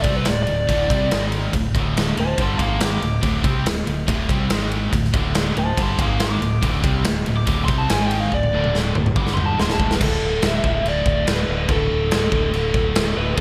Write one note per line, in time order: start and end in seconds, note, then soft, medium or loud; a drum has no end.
0.02 0.25 C2 medium
0.02 0.25 C3 medium
0.02 0.25 G3 medium
0.02 0.26 C4 loud
0.02 0.14 D5 medium
0.02 kick loud
0.02 ride medium
0.17 0.28 B4 medium
0.25 0.47 D1 medium
0.25 0.43 D2 medium
0.25 0.43 A2 medium
0.25 snare loud
0.25 ride medium
0.29 0.42 D5 medium
0.43 0.64 D2 medium
0.43 0.64 A2 medium
0.43 1.24 D5 loud
0.43 ride medium
0.50 0.69 D1 medium
0.67 0.89 D1 medium
0.67 0.89 D2 medium
0.67 0.89 A2 medium
0.67 0.89 D3 loud
0.67 kick medium
0.67 ride medium
0.89 1.10 C2 medium
0.89 1.10 C3 medium
0.89 1.11 G3 loud
0.89 1.11 C4 medium
0.89 kick loud
0.89 ride medium
1.11 1.51 G#1 medium
1.11 1.53 G#2 medium
1.11 1.53 D#3 loud
1.11 1.54 G#3 medium
1.11 snare loud
1.11 ride medium
1.32 ride medium
1.53 1.73 D1 medium
1.53 1.71 D2 medium
1.53 1.71 A2 medium
1.53 kick medium
1.53 ride medium
1.74 2.14 D1 medium
1.74 2.16 D2 medium
1.74 2.16 A2 loud
1.74 2.17 D3 medium
1.74 kick loud
1.74 ride medium
1.97 snare loud
1.97 ride medium
2.17 2.37 D1 medium
2.17 2.34 D2 medium
2.17 2.34 A2 medium
2.17 2.40 C5 medium
2.17 2.39 A5 medium
2.17 ride medium
2.37 2.58 G1 medium
2.37 2.58 G2 medium
2.37 2.59 D3 medium
2.37 2.59 G3 loud
2.37 2.60 A5 medium
2.37 kick loud
2.37 ride medium
2.42 2.58 C6 loud
2.58 2.99 G#1 medium
2.58 3.01 G#2 medium
2.58 3.01 D#3 medium
2.58 3.02 G#3 loud
2.58 2.79 F5 medium
2.58 2.80 D6 medium
2.58 kick loud
2.58 ride medium
2.80 snare loud
2.80 ride medium
2.85 3.65 D6 medium
3.01 3.22 D1 medium
3.01 3.19 D2 medium
3.01 3.19 A2 medium
3.01 ride medium
3.21 3.43 D1 medium
3.21 3.42 D2 medium
3.21 3.43 A2 loud
3.21 3.43 D3 medium
3.21 kick loud
3.21 ride medium
3.43 3.64 C2 medium
3.43 3.64 C3 medium
3.43 3.65 G3 medium
3.43 3.65 C4 loud
3.43 kick loud
3.43 ride medium
3.64 3.85 D1 medium
3.64 3.82 D2 medium
3.64 3.82 A2 medium
3.64 snare loud
3.64 ride medium
3.86 4.07 D1 medium
3.86 4.03 D2 medium
3.86 4.03 A2 medium
3.86 ride medium
4.07 4.28 D1 medium
4.07 4.28 D2 medium
4.07 4.29 A2 medium
4.07 4.29 D3 loud
4.07 kick loud
4.07 ride loud
4.28 4.49 C2 medium
4.28 4.49 C3 medium
4.28 4.49 G3 medium
4.28 4.49 C4 loud
4.28 kick loud
4.28 ride medium
4.49 4.90 G#1 medium
4.49 4.91 G#2 medium
4.49 4.92 D#3 medium
4.49 4.92 G#3 medium
4.49 snare loud
4.49 ride medium
4.71 ride medium
4.93 5.12 D1 medium
4.93 5.10 D2 medium
4.93 5.10 A2 medium
4.93 kick medium
4.93 ride medium
5.04 snare soft
5.13 5.53 D1 loud
5.13 5.54 D2 medium
5.13 5.54 A2 medium
5.13 5.56 D3 loud
5.13 kick loud
5.13 ride medium
5.35 snare loud
5.35 ride medium
5.55 5.76 D1 medium
5.55 5.73 D2 medium
5.55 5.73 A2 medium
5.55 5.78 C5 medium
5.55 5.78 A5 loud
5.55 ride medium
5.76 5.97 G1 medium
5.76 5.97 G2 medium
5.76 5.98 D3 loud
5.76 5.98 G3 medium
5.76 kick loud
5.76 ride medium
5.81 5.99 A5 medium
5.81 6.00 C6 medium
5.98 6.38 G#1 medium
5.98 6.40 G#2 medium
5.98 6.40 D#3 loud
5.98 6.40 G#3 loud
5.98 6.20 F5 medium
5.98 kick loud
5.98 ride medium
6.03 6.21 D6 medium
6.20 7.03 D6 medium
6.20 snare loud
6.20 ride medium
6.40 6.61 D1 medium
6.40 6.57 D2 medium
6.40 6.57 A2 medium
6.40 ride medium
6.62 6.82 D1 loud
6.62 6.81 D2 medium
6.62 6.82 A2 loud
6.62 6.83 D3 loud
6.62 kick loud
6.62 ride medium
6.82 7.04 C2 medium
6.82 7.03 C3 medium
6.82 7.04 G3 medium
6.82 7.04 C4 loud
6.82 kick loud
6.82 ride medium
7.04 7.25 D1 medium
7.04 7.21 D2 medium
7.04 7.21 A2 medium
7.04 snare loud
7.04 ride medium
7.25 7.46 D1 medium
7.25 7.42 D2 medium
7.25 7.42 A2 medium
7.25 ride medium
7.37 7.62 D6 medium
7.45 7.67 D1 medium
7.45 7.67 D2 loud
7.45 7.67 A2 loud
7.45 7.67 D3 medium
7.45 kick loud
7.45 ride medium
7.65 7.88 C2 medium
7.65 7.89 C3 medium
7.65 7.89 G3 medium
7.65 7.78 C6 medium
7.65 kick loud
7.65 ride medium
7.70 7.89 C4 loud
7.78 7.90 A5 medium
7.89 8.29 G#1 medium
7.89 8.31 G#2 medium
7.89 8.31 D#3 medium
7.89 8.32 G#3 medium
7.89 8.03 G#5 medium
7.89 snare loud
7.89 ride loud
8.07 8.20 G5 loud
8.11 ride medium
8.20 8.32 F5 medium
8.32 8.52 D1 medium
8.32 8.49 D2 medium
8.32 8.49 A2 medium
8.32 8.74 D5 loud
8.32 kick medium
8.43 high tom medium
8.53 8.93 D1 loud
8.53 8.94 D2 medium
8.53 8.95 A2 medium
8.53 8.95 D3 loud
8.64 high tom medium
8.75 snare medium
8.95 9.15 D1 medium
8.95 9.12 D2 medium
8.95 9.13 A2 medium
8.95 mid tom medium
9.06 mid tom medium
9.16 9.56 G1 medium
9.16 9.57 G2 medium
9.16 9.57 D3 medium
9.16 9.58 G3 loud
9.16 9.30 D6 loud
9.16 kick loud
9.27 snare medium
9.34 9.46 C6 loud
9.34 mid tom medium
9.46 9.59 A5 medium
9.57 9.98 D1 medium
9.57 9.99 D2 loud
9.57 10.00 A2 medium
9.57 10.00 D3 medium
9.57 9.73 C6 medium
9.57 snare medium
9.70 9.93 A5 loud
9.70 snare medium
9.80 10.00 B4 medium
9.80 kick medium
9.91 snare medium
10.01 10.20 D1 loud
10.01 10.42 D2 loud
10.01 10.41 A2 medium
10.01 10.43 D3 loud
10.01 10.45 A4 medium
10.01 kick loud
10.01 crash loud
10.01 crash medium
10.22 10.41 D1 medium
10.42 10.62 D1 medium
10.42 10.63 D2 medium
10.42 10.62 A2 medium
10.42 10.63 D3 medium
10.42 snare loud
10.42 crash medium
10.47 10.88 E5 medium
10.63 10.83 D1 medium
10.63 10.83 D2 medium
10.63 10.83 A2 medium
10.63 10.83 D3 loud
10.63 kick medium
10.84 11.04 D1 medium
10.84 11.25 D2 loud
10.84 11.25 A2 loud
10.84 11.26 D3 loud
10.84 crash medium
10.89 11.31 D5 medium
11.06 11.25 D1 medium
11.06 kick medium
11.26 11.47 D1 medium
11.26 11.46 D2 medium
11.26 11.48 A2 medium
11.26 11.48 D3 medium
11.26 11.71 B4 medium
11.26 snare loud
11.26 crash medium
11.48 11.68 D1 medium
11.48 11.67 D2 medium
11.48 11.68 A2 medium
11.48 11.68 D3 medium
11.69 11.88 D1 loud
11.69 12.09 D2 medium
11.69 12.09 A2 loud
11.69 12.10 D3 loud
11.69 13.17 A4 loud
11.69 kick loud
11.69 crash medium
11.91 12.10 D1 medium
12.10 12.32 D1 medium
12.10 12.31 D2 medium
12.10 12.31 A2 medium
12.10 12.32 D3 medium
12.10 snare loud
12.10 crash medium
12.32 12.52 D1 medium
12.32 12.50 D2 medium
12.32 12.51 A2 medium
12.32 12.52 D3 loud
12.32 kick medium
12.51 12.73 D1 medium
12.51 12.93 D2 loud
12.51 12.93 A2 loud
12.51 12.94 D3 loud
12.51 crash medium
12.74 12.94 D1 medium
12.74 kick medium
12.94 13.16 D1 loud
12.94 13.13 D2 medium
12.94 13.14 A2 medium
12.94 13.14 D3 loud
12.94 snare loud
12.94 crash medium
13.14 13.37 D1 medium
13.14 13.36 D2 medium
13.14 13.36 A2 medium
13.14 13.35 D3 loud
13.14 13.37 B4 medium
13.36 13.41 G2 loud
13.36 13.41 D3 loud
13.36 13.41 G3 loud
13.36 13.41 A4 loud